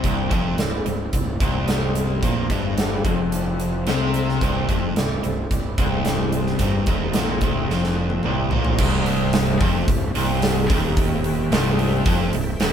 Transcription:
0.03 fingered electric bass C1, overdriven electric guitar C2, twelve-string acoustic guitar C3 E3 G3 C4 E4, kick, closed hi-hat
0.31 fingered electric bass F1, overdriven electric guitar F2, twelve-string acoustic guitar G3 C4 E4, kick, closed hi-hat
0.58 fingered electric bass C1, overdriven electric guitar C2, twelve-string acoustic guitar C3 E3 G3 C4 E4, snare, closed hi-hat
0.84 fingered electric bass C1, overdriven electric guitar C2, twelve-string acoustic guitar G3 C4 E4, closed hi-hat
1.13 fingered electric bass C1, overdriven electric guitar C2, twelve-string acoustic guitar E3 G3 C4 E4, kick, closed hi-hat
1.39 fingered electric bass C1, overdriven electric guitar C2, twelve-string acoustic guitar G3 C4 E4, kick, closed hi-hat
1.68 twelve-string acoustic guitar C3 E3 G3 C4 E4, snare, closed hi-hat
1.95 twelve-string acoustic guitar G3 C4 E4, closed hi-hat
2.22 fingered electric bass A#1, overdriven electric guitar A#2, twelve-string acoustic guitar C3 E3 G3 C4 E4, kick, closed hi-hat
2.50 fingered electric bass G1, overdriven electric guitar G2, twelve-string acoustic guitar G3 C4 E4, kick, closed hi-hat
2.77 twelve-string acoustic guitar C3 E3 G3 C4 E4, snare, closed hi-hat
3.04 fingered electric bass F1, overdriven electric guitar F2, twelve-string acoustic guitar G3 C4 E4, kick, closed hi-hat
3.31 twelve-string acoustic guitar E3 G3 C4 E4, closed hi-hat
3.59 twelve-string acoustic guitar G3 C4 E4, closed hi-hat
3.86 fingered electric bass C2, twelve-string acoustic guitar C3 E3 G3 C4 E4, overdriven electric guitar C3, snare, closed hi-hat
4.14 twelve-string acoustic guitar G3 C4 E4, closed hi-hat
4.29 snare
4.41 fingered electric bass C1, overdriven electric guitar C2, twelve-string acoustic guitar C3 E3 G3 C4 E4, kick, closed hi-hat
4.69 fingered electric bass F1, overdriven electric guitar F2, twelve-string acoustic guitar G3 C4 E4, kick, closed hi-hat
4.96 fingered electric bass C1, overdriven electric guitar C2, twelve-string acoustic guitar C3 E3 G3 C4 E4, snare, closed hi-hat
5.23 fingered electric bass C1, overdriven electric guitar C2, twelve-string acoustic guitar G3 C4 E4, closed hi-hat
5.50 fingered electric bass C1, overdriven electric guitar C2, twelve-string acoustic guitar E3 G3 C4 E4, kick, closed hi-hat
5.78 fingered electric bass C1, overdriven electric guitar C2, twelve-string acoustic guitar G3 C4 E4, kick, closed hi-hat
6.05 twelve-string acoustic guitar C3 E3 G3 C4 E4, snare, closed hi-hat
6.32 twelve-string acoustic guitar G3 C4 E4, closed hi-hat
6.46 snare
6.59 fingered electric bass G1, overdriven electric guitar G2, twelve-string acoustic guitar C3 E3 G3 C4 E4, kick, closed hi-hat
6.86 fingered electric bass D#1, overdriven electric guitar D#2, twelve-string acoustic guitar C4 E4, kick, closed hi-hat
6.91 twelve-string acoustic guitar G3
7.13 fingered electric bass A#1, overdriven electric guitar A#2, twelve-string acoustic guitar C3 E3 G3 C4 E4, snare, closed hi-hat
7.41 fingered electric bass C1, overdriven electric guitar C2, twelve-string acoustic guitar G3 C4 E4, kick, closed hi-hat
7.68 fingered electric bass F1, overdriven electric guitar F2, twelve-string acoustic guitar E3 G3 C4 E4, snare
7.84 snare
7.96 twelve-string acoustic guitar G3 C4 E4
8.10 high tom
8.23 fingered electric bass C1, overdriven electric guitar C2, twelve-string acoustic guitar C3 E3 G3 C4 E4, mid tom
8.51 fingered electric bass A#1, overdriven electric guitar A#2, twelve-string acoustic guitar G3 C4 E4, floor tom
8.65 floor tom
8.77 fingered electric bass C1, overdriven electric guitar C2, tonewheel organ G4 C5 E5, kick, crash
9.06 open hi-hat
9.33 snare, open hi-hat
9.61 fingered electric bass F1, overdriven electric guitar F2, kick, open hi-hat
9.88 fingered electric bass C1, overdriven electric guitar C2, kick, open hi-hat
10.14 fingered electric bass C1, overdriven electric guitar C2, open hi-hat
10.42 snare, open hi-hat
10.70 fingered electric bass D#1, overdriven electric guitar D#2, kick, open hi-hat
10.97 tonewheel organ C5 E5 G5, kick, open hi-hat
11.24 open hi-hat
11.51 fingered electric bass C1, overdriven electric guitar C2, snare, open hi-hat
11.79 open hi-hat
12.06 fingered electric bass F1, overdriven electric guitar F2, kick, open hi-hat
12.33 fingered electric bass C1, overdriven electric guitar C2, open hi-hat
12.60 fingered electric bass D#1, overdriven electric guitar D#2, snare, open hi-hat

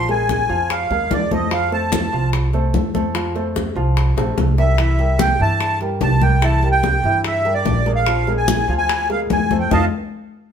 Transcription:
Already playing: upright bass A#1
0.09 grand piano G#3 G#4 A#4, accordion G#5, high bongo, high conga
0.29 high bongo, high conga
0.49 upright bass F2, grand piano F3 F4 F5, high conga
0.70 accordion F5, high bongo, high conga
0.90 upright bass D#2, grand piano G#3 G#4 A#4, high bongo, high conga
1.11 upright bass F2, accordion D5, high bongo, low bongo, high conga
1.31 grand piano A3 A4 C5, accordion D#5, high bongo, high conga
1.51 grand piano F3 F4 F5, accordion F5, high bongo, high conga
1.71 grand piano A3 A4 C5, accordion A5, high bongo, high conga
1.92 high bongo, high conga
2.12 upright bass C2, grand piano F3 F4 F5, high conga
2.33 high bongo, high conga
2.53 grand piano A3 A4 C5, high bongo, high conga
2.74 upright bass F2, high bongo, low bongo, high conga
2.95 grand piano A3 A4 C5, high bongo, high conga
3.14 grand piano F3 F4 F5, high bongo, high conga
3.35 grand piano A3 A4 C5, high bongo, high conga
3.56 high bongo, high conga
3.75 upright bass C2, grand piano F3 F4 F5, high conga
3.97 high bongo, high conga
4.17 upright bass A#1, grand piano A3 A4 C5, high bongo, high conga
4.37 upright bass C2, high bongo, high conga
4.58 grand piano G3 G4 A#4, accordion E5, low bongo
4.78 grand piano E3 E4 E5, high bongo, high conga
4.99 grand piano G3 G4 A#4, high bongo, high conga
5.19 accordion G5, high bongo, high conga
5.39 upright bass G2, grand piano E3 E4 E5, accordion A5, high conga
5.60 high bongo, high conga
5.80 grand piano G3 G4 A#4, high bongo, high conga
6.01 upright bass C2, accordion A5, high bongo, low bongo, high conga
6.21 grand piano G3 G4 A#4, accordion G5, high bongo, high conga
6.42 grand piano E3 E4 E5, accordion A5, high bongo, high conga
6.62 grand piano G3 G4 A#4, high bongo, high conga
6.72 accordion G5
6.83 high bongo, high conga
7.03 upright bass G2, grand piano E3 E4 E5, high conga
7.25 accordion E5, high bongo, high conga
7.45 grand piano G3 G4 A#4, high bongo, high conga
7.54 accordion D5
7.65 upright bass A#1, high bongo, low bongo, high conga
7.86 grand piano G#3 G#4 A#4, high bongo
7.95 accordion F5
8.06 grand piano F3 F4 F5, high bongo, high conga
8.27 grand piano G#3 G#4 A#4, high bongo, high conga
8.37 accordion G#5
8.48 high bongo, high conga
8.68 upright bass D2, grand piano F3 F4 F5, high conga
8.78 accordion G#5
8.89 high bongo, high conga
9.10 grand piano G#3 G#4 A#4, accordion F5, high bongo, high conga
9.30 upright bass F2, accordion G#5, high bongo, low bongo, high conga
9.51 grand piano A3 A4 C5, high bongo, high conga
9.60 accordion G5
9.71 upright bass F2, grand piano D#4 F4 A4, accordion D#5 F5 A5, low bongo, high conga

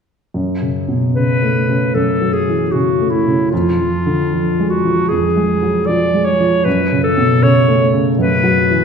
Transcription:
0.34 grand piano F#2
0.62 grand piano C#3
0.88 grand piano B2
1.15 grand piano C#3, clarinet B4
1.43 grand piano A3
1.69 grand piano C#3
1.94 grand piano F#2, clarinet A4
2.21 grand piano F#3
2.33 clarinet G#4
2.48 grand piano E3
2.71 grand piano C#3, clarinet F#4
3.00 grand piano A3
3.10 clarinet E4
3.27 grand piano C#3
3.50 grand piano F2, clarinet F4
3.80 grand piano F3
4.06 grand piano D3
4.33 grand piano F3
4.60 grand piano G#3
4.69 clarinet F#4
4.85 grand piano F3
5.09 grand piano F2, clarinet G#4
5.36 grand piano G#3
5.62 grand piano F#3
5.86 grand piano F3, clarinet D5
6.14 grand piano G#3
6.25 clarinet C#5
6.40 grand piano F3
6.64 grand piano F#2, clarinet B4
6.92 grand piano C#3
7.04 clarinet A4
7.17 grand piano B2
7.43 grand piano C#3, clarinet C#5
7.68 grand piano A3
7.93 grand piano C#3
8.19 grand piano F#2, clarinet B4
8.43 grand piano F#3
8.70 grand piano E3

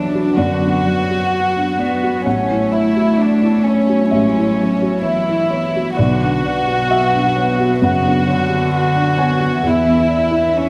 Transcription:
Already playing: felt piano B1 D4 F#4 B4 C#5, cello E3, string section F#3 F#4 B4, violin section D4
0.15 felt piano F#4
0.36 felt piano F#2 D5, cello D3, violin section F#4
0.61 felt piano D4
0.84 cello F#3, felt piano D5
1.10 felt piano F#4
1.32 cello F#3
1.56 felt piano D4
1.79 cello B3, felt piano D5
2.03 felt piano F#4
2.24 felt piano A1 F#5, string section F#3 E4 C#5, cello A3, violin section C#4
2.50 felt piano E4
2.74 violin section E4, felt piano C#5
2.96 felt piano F#4
3.19 violin section D4
3.42 felt piano E4
3.64 violin section C#4, felt piano C#5
3.89 felt piano F#4
4.09 felt piano A1 E5, cello G#3, violin section C#4
4.37 felt piano E4
4.58 cello F#3, felt piano C#5
4.82 felt piano F#4
5.02 cello E3, violin section E4, felt piano C#5
5.29 felt piano E4
5.50 felt piano C#5
5.76 felt piano F#4
5.97 felt piano B1 D5, cello D3, string section F#3 B3 B4, violin section F#4
6.22 felt piano D4
6.43 cello B2, felt piano D5
6.67 felt piano F#4
6.91 felt piano E5
7.13 felt piano D4
7.36 felt piano C#5
7.60 felt piano F#4
7.81 felt piano F#2 F#5, cello C#3, violin section F#4
8.05 felt piano D4
8.27 cello D3, felt piano C#5
8.50 felt piano F#4
8.73 violin section F#4
8.95 felt piano D4
9.17 felt piano C#5 G#5
9.40 felt piano F#4
9.61 felt piano E2, cello E3, string section E3 E4 E5, violin section E4
9.85 felt piano B3
10.09 felt piano D5
10.31 felt piano E4
10.55 violin section C#4

